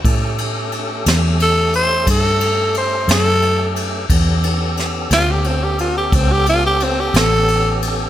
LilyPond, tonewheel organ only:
\new Staff \with { instrumentName = "Tonewheel organ" } { \time 12/8 \key a \mixolydian \tempo 4. = 59 <a cis' g' a'>1. | <b cis' g' a'>1. | }